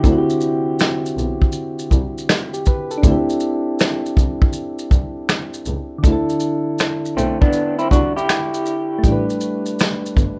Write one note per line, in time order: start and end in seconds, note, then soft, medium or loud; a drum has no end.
0.00 2.59 D3 medium
0.00 2.62 C4 medium
0.00 0.25 E4 medium
0.00 0.24 G4 medium
0.00 kick loud
0.04 0.12 D2 loud
0.04 2.64 E4 medium
0.04 closed hi-hat medium
0.04 shaker medium
0.12 0.16 F#4 medium
0.18 2.32 G4 medium
0.30 shaker soft
0.41 shaker soft
0.79 finger snap medium
0.79 snare loud
0.79 closed hi-hat medium
0.79 shaker medium
1.06 shaker soft
1.17 1.25 B1 medium
1.17 shaker soft
1.42 kick medium
1.52 closed hi-hat soft
1.52 shaker soft
1.79 shaker soft
1.91 2.00 C2 medium
1.91 kick medium
1.91 shaker soft
2.18 shaker soft
2.29 finger snap medium
2.29 snare loud
2.29 closed hi-hat medium
2.29 shaker medium
2.54 2.66 G4 medium
2.54 shaker soft
2.66 2.90 B4 medium
2.66 kick medium
2.66 shaker soft
2.91 3.26 A4 medium
2.91 shaker soft
2.98 5.97 D4 medium
3.02 3.12 D2 loud
3.02 5.99 C4 medium
3.02 kick loud
3.02 closed hi-hat medium
3.02 shaker medium
3.07 6.01 E4 medium
3.12 6.04 G4 medium
3.30 shaker soft
3.40 shaker soft
3.79 finger snap medium
3.79 snare loud
3.79 closed hi-hat medium
3.79 shaker medium
4.06 shaker soft
4.17 4.25 C2 medium
4.17 kick loud
4.17 shaker soft
4.42 kick loud
4.53 closed hi-hat medium
4.53 shaker medium
4.79 shaker soft
4.91 4.99 C2 medium
4.91 kick medium
4.91 shaker medium
5.29 finger snap medium
5.29 snare loud
5.29 closed hi-hat medium
5.29 shaker medium
5.54 shaker soft
5.65 5.75 C#2 medium
5.65 shaker soft
5.98 8.97 D3 medium
6.03 6.12 D2 medium
6.03 8.99 D4 medium
6.03 kick loud
6.03 closed hi-hat medium
6.03 shaker medium
6.07 9.02 E4 medium
6.12 9.04 A4 medium
6.30 shaker soft
6.40 shaker soft
6.79 finger snap medium
6.79 snare loud
6.79 closed hi-hat medium
6.79 shaker medium
7.05 shaker soft
7.17 7.25 B1 medium
7.17 7.40 A3 medium
7.17 7.39 C4 medium
7.17 shaker soft
7.41 7.77 B3 medium
7.41 7.76 D4 medium
7.41 kick medium
7.53 closed hi-hat medium
7.53 shaker medium
7.79 7.91 C4 medium
7.79 7.91 E4 medium
7.79 shaker soft
7.91 8.00 C2 medium
7.91 8.14 D4 medium
7.91 8.14 F#4 medium
7.91 kick medium
7.91 shaker medium
8.16 9.24 E4 medium
8.16 9.24 G4 medium
8.16 shaker soft
8.29 finger snap medium
8.29 snare loud
8.29 closed hi-hat medium
8.29 shaker medium
8.54 shaker soft
8.66 shaker soft
8.99 10.39 A3 medium
9.03 9.12 A1 medium
9.03 10.39 G3 medium
9.03 kick medium
9.03 closed hi-hat medium
9.03 shaker medium
9.08 10.39 D4 medium
9.12 10.39 B4 medium
9.30 shaker soft
9.41 shaker soft
9.66 shaker soft
9.79 finger snap medium
9.79 snare loud
9.79 closed hi-hat medium
9.79 shaker medium
10.06 shaker soft
10.17 10.25 G1 medium
10.17 kick medium
10.17 shaker soft